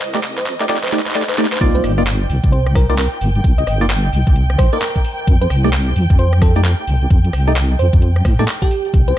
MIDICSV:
0, 0, Header, 1, 6, 480
1, 0, Start_track
1, 0, Tempo, 458015
1, 1686, Time_signature, 4, 2, 24, 8
1, 9628, End_track
2, 0, Start_track
2, 0, Title_t, "Violin section"
2, 0, Program_c, 0, 48
2, 0, Note_on_c, 0, 75, 82
2, 1687, Note_on_c, 0, 79, 85
2, 1700, Note_off_c, 0, 75, 0
2, 9358, Note_off_c, 0, 79, 0
2, 9370, Note_on_c, 0, 79, 85
2, 9628, Note_off_c, 0, 79, 0
2, 9628, End_track
3, 0, Start_track
3, 0, Title_t, "FM electric piano"
3, 0, Program_c, 1, 5
3, 394, Note_on_c, 1, 72, 89
3, 478, Note_off_c, 1, 72, 0
3, 875, Note_on_c, 1, 72, 96
3, 953, Note_off_c, 1, 72, 0
3, 1114, Note_on_c, 1, 72, 98
3, 1192, Note_off_c, 1, 72, 0
3, 1353, Note_on_c, 1, 72, 96
3, 1431, Note_off_c, 1, 72, 0
3, 1594, Note_on_c, 1, 72, 97
3, 1672, Note_off_c, 1, 72, 0
3, 1830, Note_on_c, 1, 72, 94
3, 1917, Note_off_c, 1, 72, 0
3, 2643, Note_on_c, 1, 72, 90
3, 2779, Note_off_c, 1, 72, 0
3, 2885, Note_on_c, 1, 70, 91
3, 3003, Note_off_c, 1, 70, 0
3, 3034, Note_on_c, 1, 70, 91
3, 3093, Note_off_c, 1, 70, 0
3, 3126, Note_on_c, 1, 70, 80
3, 3221, Note_off_c, 1, 70, 0
3, 3754, Note_on_c, 1, 75, 89
3, 3813, Note_off_c, 1, 75, 0
3, 3847, Note_on_c, 1, 75, 76
3, 3941, Note_off_c, 1, 75, 0
3, 4804, Note_on_c, 1, 72, 96
3, 4923, Note_off_c, 1, 72, 0
3, 4955, Note_on_c, 1, 70, 97
3, 5586, Note_off_c, 1, 70, 0
3, 5675, Note_on_c, 1, 72, 95
3, 5759, Note_off_c, 1, 72, 0
3, 6486, Note_on_c, 1, 72, 93
3, 6621, Note_off_c, 1, 72, 0
3, 6727, Note_on_c, 1, 69, 93
3, 6845, Note_off_c, 1, 69, 0
3, 7833, Note_on_c, 1, 75, 88
3, 7918, Note_off_c, 1, 75, 0
3, 8165, Note_on_c, 1, 72, 89
3, 8300, Note_off_c, 1, 72, 0
3, 8794, Note_on_c, 1, 69, 92
3, 8879, Note_off_c, 1, 69, 0
3, 9035, Note_on_c, 1, 67, 95
3, 9426, Note_off_c, 1, 67, 0
3, 9515, Note_on_c, 1, 72, 93
3, 9599, Note_off_c, 1, 72, 0
3, 9628, End_track
4, 0, Start_track
4, 0, Title_t, "Synth stab"
4, 0, Program_c, 2, 62
4, 153, Note_on_c, 2, 57, 92
4, 153, Note_on_c, 2, 63, 84
4, 153, Note_on_c, 2, 67, 81
4, 153, Note_on_c, 2, 74, 102
4, 208, Note_off_c, 2, 57, 0
4, 208, Note_off_c, 2, 63, 0
4, 208, Note_off_c, 2, 67, 0
4, 208, Note_off_c, 2, 74, 0
4, 633, Note_on_c, 2, 57, 96
4, 633, Note_on_c, 2, 63, 83
4, 633, Note_on_c, 2, 67, 86
4, 633, Note_on_c, 2, 74, 102
4, 688, Note_off_c, 2, 57, 0
4, 688, Note_off_c, 2, 63, 0
4, 688, Note_off_c, 2, 67, 0
4, 688, Note_off_c, 2, 74, 0
4, 727, Note_on_c, 2, 63, 86
4, 727, Note_on_c, 2, 74, 107
4, 728, Note_on_c, 2, 57, 95
4, 728, Note_on_c, 2, 67, 86
4, 814, Note_off_c, 2, 57, 0
4, 814, Note_off_c, 2, 63, 0
4, 814, Note_off_c, 2, 67, 0
4, 814, Note_off_c, 2, 74, 0
4, 968, Note_on_c, 2, 57, 97
4, 968, Note_on_c, 2, 63, 90
4, 968, Note_on_c, 2, 67, 87
4, 968, Note_on_c, 2, 74, 104
4, 1054, Note_off_c, 2, 57, 0
4, 1054, Note_off_c, 2, 63, 0
4, 1054, Note_off_c, 2, 67, 0
4, 1054, Note_off_c, 2, 74, 0
4, 1207, Note_on_c, 2, 63, 89
4, 1208, Note_on_c, 2, 57, 95
4, 1208, Note_on_c, 2, 67, 88
4, 1208, Note_on_c, 2, 74, 105
4, 1294, Note_off_c, 2, 57, 0
4, 1294, Note_off_c, 2, 63, 0
4, 1294, Note_off_c, 2, 67, 0
4, 1294, Note_off_c, 2, 74, 0
4, 1447, Note_on_c, 2, 57, 95
4, 1447, Note_on_c, 2, 63, 87
4, 1447, Note_on_c, 2, 67, 86
4, 1447, Note_on_c, 2, 74, 110
4, 1534, Note_off_c, 2, 57, 0
4, 1534, Note_off_c, 2, 63, 0
4, 1534, Note_off_c, 2, 67, 0
4, 1534, Note_off_c, 2, 74, 0
4, 1687, Note_on_c, 2, 65, 95
4, 1688, Note_on_c, 2, 58, 103
4, 1688, Note_on_c, 2, 63, 92
4, 1688, Note_on_c, 2, 74, 111
4, 2015, Note_off_c, 2, 65, 0
4, 2016, Note_off_c, 2, 58, 0
4, 2016, Note_off_c, 2, 63, 0
4, 2016, Note_off_c, 2, 74, 0
4, 2075, Note_on_c, 2, 58, 95
4, 2075, Note_on_c, 2, 63, 87
4, 2075, Note_on_c, 2, 65, 85
4, 2075, Note_on_c, 2, 74, 101
4, 2129, Note_off_c, 2, 58, 0
4, 2129, Note_off_c, 2, 63, 0
4, 2129, Note_off_c, 2, 65, 0
4, 2129, Note_off_c, 2, 74, 0
4, 3035, Note_on_c, 2, 58, 97
4, 3035, Note_on_c, 2, 63, 89
4, 3035, Note_on_c, 2, 65, 90
4, 3035, Note_on_c, 2, 74, 108
4, 3089, Note_off_c, 2, 58, 0
4, 3089, Note_off_c, 2, 63, 0
4, 3089, Note_off_c, 2, 65, 0
4, 3089, Note_off_c, 2, 74, 0
4, 3995, Note_on_c, 2, 58, 90
4, 3995, Note_on_c, 2, 63, 87
4, 3995, Note_on_c, 2, 74, 103
4, 3996, Note_on_c, 2, 65, 85
4, 4049, Note_off_c, 2, 58, 0
4, 4049, Note_off_c, 2, 63, 0
4, 4049, Note_off_c, 2, 74, 0
4, 4050, Note_off_c, 2, 65, 0
4, 4956, Note_on_c, 2, 58, 99
4, 4956, Note_on_c, 2, 63, 92
4, 4957, Note_on_c, 2, 65, 89
4, 4957, Note_on_c, 2, 74, 109
4, 5010, Note_off_c, 2, 58, 0
4, 5010, Note_off_c, 2, 63, 0
4, 5010, Note_off_c, 2, 65, 0
4, 5010, Note_off_c, 2, 74, 0
4, 5915, Note_on_c, 2, 57, 93
4, 5915, Note_on_c, 2, 63, 87
4, 5916, Note_on_c, 2, 67, 89
4, 5916, Note_on_c, 2, 74, 104
4, 5969, Note_off_c, 2, 57, 0
4, 5969, Note_off_c, 2, 63, 0
4, 5969, Note_off_c, 2, 74, 0
4, 5970, Note_off_c, 2, 67, 0
4, 6875, Note_on_c, 2, 57, 96
4, 6875, Note_on_c, 2, 63, 87
4, 6876, Note_on_c, 2, 67, 89
4, 6876, Note_on_c, 2, 74, 111
4, 6929, Note_off_c, 2, 57, 0
4, 6929, Note_off_c, 2, 63, 0
4, 6929, Note_off_c, 2, 67, 0
4, 6929, Note_off_c, 2, 74, 0
4, 7835, Note_on_c, 2, 57, 97
4, 7835, Note_on_c, 2, 63, 88
4, 7835, Note_on_c, 2, 67, 88
4, 7835, Note_on_c, 2, 74, 104
4, 7889, Note_off_c, 2, 57, 0
4, 7889, Note_off_c, 2, 63, 0
4, 7889, Note_off_c, 2, 67, 0
4, 7889, Note_off_c, 2, 74, 0
4, 8795, Note_on_c, 2, 57, 99
4, 8795, Note_on_c, 2, 74, 109
4, 8796, Note_on_c, 2, 63, 91
4, 8796, Note_on_c, 2, 67, 88
4, 8849, Note_off_c, 2, 57, 0
4, 8849, Note_off_c, 2, 63, 0
4, 8849, Note_off_c, 2, 74, 0
4, 8850, Note_off_c, 2, 67, 0
4, 9628, End_track
5, 0, Start_track
5, 0, Title_t, "Wobble bass"
5, 0, Program_c, 3, 39
5, 6, Note_on_c, 3, 36, 83
5, 456, Note_off_c, 3, 36, 0
5, 487, Note_on_c, 3, 41, 80
5, 604, Note_off_c, 3, 41, 0
5, 632, Note_on_c, 3, 41, 84
5, 936, Note_off_c, 3, 41, 0
5, 966, Note_on_c, 3, 39, 108
5, 1084, Note_off_c, 3, 39, 0
5, 1686, Note_on_c, 3, 36, 98
5, 1889, Note_off_c, 3, 36, 0
5, 1926, Note_on_c, 3, 31, 84
5, 2376, Note_off_c, 3, 31, 0
5, 2407, Note_on_c, 3, 36, 80
5, 2524, Note_off_c, 3, 36, 0
5, 2554, Note_on_c, 3, 36, 81
5, 3226, Note_off_c, 3, 36, 0
5, 3369, Note_on_c, 3, 31, 84
5, 3570, Note_off_c, 3, 31, 0
5, 3608, Note_on_c, 3, 36, 98
5, 3810, Note_off_c, 3, 36, 0
5, 3849, Note_on_c, 3, 31, 85
5, 4298, Note_off_c, 3, 31, 0
5, 4330, Note_on_c, 3, 36, 79
5, 4446, Note_off_c, 3, 36, 0
5, 4474, Note_on_c, 3, 36, 84
5, 4777, Note_off_c, 3, 36, 0
5, 4808, Note_on_c, 3, 34, 105
5, 4925, Note_off_c, 3, 34, 0
5, 5528, Note_on_c, 3, 41, 102
5, 5730, Note_off_c, 3, 41, 0
5, 5769, Note_on_c, 3, 36, 85
5, 6218, Note_off_c, 3, 36, 0
5, 6248, Note_on_c, 3, 41, 82
5, 6365, Note_off_c, 3, 41, 0
5, 6395, Note_on_c, 3, 41, 84
5, 7067, Note_off_c, 3, 41, 0
5, 7206, Note_on_c, 3, 36, 83
5, 7409, Note_off_c, 3, 36, 0
5, 7446, Note_on_c, 3, 41, 100
5, 7649, Note_off_c, 3, 41, 0
5, 7686, Note_on_c, 3, 36, 88
5, 8136, Note_off_c, 3, 36, 0
5, 8167, Note_on_c, 3, 41, 82
5, 8284, Note_off_c, 3, 41, 0
5, 8313, Note_on_c, 3, 41, 84
5, 8616, Note_off_c, 3, 41, 0
5, 8646, Note_on_c, 3, 45, 102
5, 8764, Note_off_c, 3, 45, 0
5, 8793, Note_on_c, 3, 45, 97
5, 8868, Note_off_c, 3, 45, 0
5, 9366, Note_on_c, 3, 36, 98
5, 9569, Note_off_c, 3, 36, 0
5, 9628, End_track
6, 0, Start_track
6, 0, Title_t, "Drums"
6, 6, Note_on_c, 9, 39, 98
6, 6, Note_on_c, 9, 46, 106
6, 111, Note_off_c, 9, 39, 0
6, 111, Note_off_c, 9, 46, 0
6, 152, Note_on_c, 9, 39, 85
6, 152, Note_on_c, 9, 42, 64
6, 245, Note_off_c, 9, 39, 0
6, 245, Note_on_c, 9, 39, 99
6, 257, Note_off_c, 9, 42, 0
6, 350, Note_off_c, 9, 39, 0
6, 393, Note_on_c, 9, 39, 84
6, 393, Note_on_c, 9, 42, 35
6, 485, Note_off_c, 9, 39, 0
6, 485, Note_on_c, 9, 39, 96
6, 485, Note_on_c, 9, 46, 87
6, 497, Note_off_c, 9, 42, 0
6, 590, Note_off_c, 9, 39, 0
6, 590, Note_off_c, 9, 46, 0
6, 632, Note_on_c, 9, 39, 88
6, 632, Note_on_c, 9, 42, 64
6, 725, Note_off_c, 9, 39, 0
6, 725, Note_on_c, 9, 39, 104
6, 737, Note_off_c, 9, 42, 0
6, 799, Note_off_c, 9, 39, 0
6, 799, Note_on_c, 9, 39, 95
6, 874, Note_off_c, 9, 39, 0
6, 874, Note_on_c, 9, 39, 96
6, 874, Note_on_c, 9, 42, 54
6, 919, Note_off_c, 9, 39, 0
6, 919, Note_on_c, 9, 39, 94
6, 965, Note_off_c, 9, 39, 0
6, 965, Note_on_c, 9, 39, 106
6, 965, Note_on_c, 9, 46, 101
6, 979, Note_off_c, 9, 42, 0
6, 1040, Note_off_c, 9, 39, 0
6, 1040, Note_on_c, 9, 39, 96
6, 1070, Note_off_c, 9, 46, 0
6, 1114, Note_off_c, 9, 39, 0
6, 1114, Note_on_c, 9, 39, 96
6, 1114, Note_on_c, 9, 42, 66
6, 1159, Note_off_c, 9, 39, 0
6, 1159, Note_on_c, 9, 39, 97
6, 1206, Note_off_c, 9, 39, 0
6, 1206, Note_on_c, 9, 39, 106
6, 1218, Note_off_c, 9, 42, 0
6, 1280, Note_off_c, 9, 39, 0
6, 1280, Note_on_c, 9, 39, 99
6, 1356, Note_off_c, 9, 39, 0
6, 1356, Note_on_c, 9, 39, 93
6, 1356, Note_on_c, 9, 42, 54
6, 1401, Note_off_c, 9, 39, 0
6, 1401, Note_on_c, 9, 39, 95
6, 1448, Note_off_c, 9, 39, 0
6, 1448, Note_on_c, 9, 39, 110
6, 1448, Note_on_c, 9, 46, 91
6, 1460, Note_off_c, 9, 42, 0
6, 1520, Note_off_c, 9, 39, 0
6, 1520, Note_on_c, 9, 39, 98
6, 1552, Note_off_c, 9, 46, 0
6, 1595, Note_off_c, 9, 39, 0
6, 1595, Note_on_c, 9, 39, 100
6, 1595, Note_on_c, 9, 42, 66
6, 1641, Note_off_c, 9, 39, 0
6, 1641, Note_on_c, 9, 39, 101
6, 1686, Note_on_c, 9, 36, 115
6, 1687, Note_off_c, 9, 42, 0
6, 1687, Note_on_c, 9, 42, 68
6, 1745, Note_off_c, 9, 39, 0
6, 1791, Note_off_c, 9, 36, 0
6, 1792, Note_off_c, 9, 42, 0
6, 1836, Note_on_c, 9, 42, 67
6, 1927, Note_on_c, 9, 37, 55
6, 1927, Note_on_c, 9, 46, 113
6, 1941, Note_off_c, 9, 42, 0
6, 2032, Note_off_c, 9, 37, 0
6, 2032, Note_off_c, 9, 46, 0
6, 2167, Note_on_c, 9, 39, 120
6, 2167, Note_on_c, 9, 42, 65
6, 2272, Note_off_c, 9, 39, 0
6, 2272, Note_off_c, 9, 42, 0
6, 2406, Note_on_c, 9, 46, 97
6, 2511, Note_off_c, 9, 46, 0
6, 2553, Note_on_c, 9, 36, 107
6, 2647, Note_on_c, 9, 42, 67
6, 2658, Note_off_c, 9, 36, 0
6, 2752, Note_off_c, 9, 42, 0
6, 2793, Note_on_c, 9, 37, 59
6, 2886, Note_off_c, 9, 37, 0
6, 2886, Note_on_c, 9, 36, 107
6, 2886, Note_on_c, 9, 37, 73
6, 2886, Note_on_c, 9, 46, 114
6, 2991, Note_off_c, 9, 36, 0
6, 2991, Note_off_c, 9, 37, 0
6, 2991, Note_off_c, 9, 46, 0
6, 3035, Note_on_c, 9, 42, 69
6, 3127, Note_off_c, 9, 42, 0
6, 3127, Note_on_c, 9, 39, 121
6, 3127, Note_on_c, 9, 42, 70
6, 3232, Note_off_c, 9, 39, 0
6, 3232, Note_off_c, 9, 42, 0
6, 3366, Note_on_c, 9, 46, 100
6, 3471, Note_off_c, 9, 46, 0
6, 3514, Note_on_c, 9, 42, 37
6, 3606, Note_off_c, 9, 42, 0
6, 3606, Note_on_c, 9, 42, 69
6, 3607, Note_on_c, 9, 36, 120
6, 3711, Note_off_c, 9, 42, 0
6, 3712, Note_off_c, 9, 36, 0
6, 3754, Note_on_c, 9, 42, 65
6, 3847, Note_on_c, 9, 37, 56
6, 3847, Note_on_c, 9, 46, 109
6, 3859, Note_off_c, 9, 42, 0
6, 3952, Note_off_c, 9, 37, 0
6, 3952, Note_off_c, 9, 46, 0
6, 4087, Note_on_c, 9, 39, 124
6, 4087, Note_on_c, 9, 42, 65
6, 4192, Note_off_c, 9, 39, 0
6, 4192, Note_off_c, 9, 42, 0
6, 4328, Note_on_c, 9, 46, 95
6, 4432, Note_off_c, 9, 46, 0
6, 4474, Note_on_c, 9, 36, 115
6, 4567, Note_on_c, 9, 42, 66
6, 4579, Note_off_c, 9, 36, 0
6, 4672, Note_off_c, 9, 42, 0
6, 4715, Note_on_c, 9, 37, 57
6, 4807, Note_on_c, 9, 36, 110
6, 4808, Note_off_c, 9, 37, 0
6, 4808, Note_on_c, 9, 37, 73
6, 4808, Note_on_c, 9, 46, 108
6, 4912, Note_off_c, 9, 36, 0
6, 4913, Note_off_c, 9, 37, 0
6, 4913, Note_off_c, 9, 46, 0
6, 4955, Note_on_c, 9, 42, 65
6, 5048, Note_off_c, 9, 42, 0
6, 5048, Note_on_c, 9, 39, 123
6, 5048, Note_on_c, 9, 42, 68
6, 5153, Note_off_c, 9, 39, 0
6, 5153, Note_off_c, 9, 42, 0
6, 5195, Note_on_c, 9, 36, 65
6, 5288, Note_on_c, 9, 46, 93
6, 5300, Note_off_c, 9, 36, 0
6, 5393, Note_off_c, 9, 46, 0
6, 5436, Note_on_c, 9, 42, 36
6, 5527, Note_off_c, 9, 42, 0
6, 5527, Note_on_c, 9, 42, 68
6, 5528, Note_on_c, 9, 36, 124
6, 5632, Note_off_c, 9, 36, 0
6, 5632, Note_off_c, 9, 42, 0
6, 5674, Note_on_c, 9, 42, 65
6, 5766, Note_on_c, 9, 37, 54
6, 5766, Note_on_c, 9, 46, 106
6, 5779, Note_off_c, 9, 42, 0
6, 5871, Note_off_c, 9, 37, 0
6, 5871, Note_off_c, 9, 46, 0
6, 6005, Note_on_c, 9, 39, 127
6, 6005, Note_on_c, 9, 42, 62
6, 6110, Note_off_c, 9, 39, 0
6, 6110, Note_off_c, 9, 42, 0
6, 6245, Note_on_c, 9, 46, 87
6, 6349, Note_off_c, 9, 46, 0
6, 6394, Note_on_c, 9, 36, 112
6, 6486, Note_on_c, 9, 42, 64
6, 6499, Note_off_c, 9, 36, 0
6, 6590, Note_off_c, 9, 42, 0
6, 6632, Note_on_c, 9, 37, 58
6, 6724, Note_off_c, 9, 37, 0
6, 6724, Note_on_c, 9, 37, 72
6, 6724, Note_on_c, 9, 46, 105
6, 6727, Note_on_c, 9, 36, 115
6, 6829, Note_off_c, 9, 37, 0
6, 6829, Note_off_c, 9, 46, 0
6, 6831, Note_off_c, 9, 36, 0
6, 6872, Note_on_c, 9, 42, 64
6, 6964, Note_off_c, 9, 42, 0
6, 6964, Note_on_c, 9, 39, 127
6, 6964, Note_on_c, 9, 42, 66
6, 7069, Note_off_c, 9, 39, 0
6, 7069, Note_off_c, 9, 42, 0
6, 7205, Note_on_c, 9, 46, 89
6, 7309, Note_off_c, 9, 46, 0
6, 7352, Note_on_c, 9, 42, 36
6, 7445, Note_off_c, 9, 42, 0
6, 7445, Note_on_c, 9, 42, 65
6, 7446, Note_on_c, 9, 36, 121
6, 7549, Note_off_c, 9, 42, 0
6, 7551, Note_off_c, 9, 36, 0
6, 7592, Note_on_c, 9, 42, 65
6, 7685, Note_on_c, 9, 37, 54
6, 7685, Note_on_c, 9, 46, 104
6, 7697, Note_off_c, 9, 42, 0
6, 7790, Note_off_c, 9, 37, 0
6, 7790, Note_off_c, 9, 46, 0
6, 7926, Note_on_c, 9, 39, 124
6, 7926, Note_on_c, 9, 42, 66
6, 8030, Note_off_c, 9, 39, 0
6, 8030, Note_off_c, 9, 42, 0
6, 8165, Note_on_c, 9, 46, 86
6, 8270, Note_off_c, 9, 46, 0
6, 8313, Note_on_c, 9, 36, 106
6, 8405, Note_on_c, 9, 42, 67
6, 8418, Note_off_c, 9, 36, 0
6, 8510, Note_off_c, 9, 42, 0
6, 8553, Note_on_c, 9, 37, 54
6, 8646, Note_off_c, 9, 37, 0
6, 8646, Note_on_c, 9, 36, 110
6, 8646, Note_on_c, 9, 37, 67
6, 8646, Note_on_c, 9, 46, 104
6, 8750, Note_off_c, 9, 36, 0
6, 8750, Note_off_c, 9, 37, 0
6, 8750, Note_off_c, 9, 46, 0
6, 8794, Note_on_c, 9, 42, 67
6, 8887, Note_off_c, 9, 42, 0
6, 8887, Note_on_c, 9, 39, 127
6, 8887, Note_on_c, 9, 42, 65
6, 8992, Note_off_c, 9, 39, 0
6, 8992, Note_off_c, 9, 42, 0
6, 9033, Note_on_c, 9, 36, 65
6, 9127, Note_on_c, 9, 46, 89
6, 9138, Note_off_c, 9, 36, 0
6, 9232, Note_off_c, 9, 46, 0
6, 9274, Note_on_c, 9, 42, 36
6, 9366, Note_on_c, 9, 36, 120
6, 9367, Note_off_c, 9, 42, 0
6, 9367, Note_on_c, 9, 42, 68
6, 9470, Note_off_c, 9, 36, 0
6, 9472, Note_off_c, 9, 42, 0
6, 9514, Note_on_c, 9, 42, 69
6, 9619, Note_off_c, 9, 42, 0
6, 9628, End_track
0, 0, End_of_file